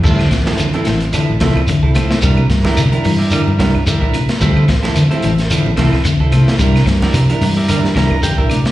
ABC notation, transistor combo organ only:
X:1
M:4/4
L:1/16
Q:"Swing 16ths" 1/4=110
K:Dm
V:1 name="Transistor combo organ"
[F,A,CE]2 z3 [F,A,CE]2 z3 [F,A,CE] z3 [F,A,CE]2 | z3 [G,B,DE] z3 [G,B,DE]2 z3 [G,B,DE] z3 | [F,A,CE]2 z3 [F,A,CE]2 z3 [F,A,CE] z3 [F,A,CE]2 | z3 [G,B,DE] z3 [G,B,DE]2 z b2 [G,B,DGg] e d2 |]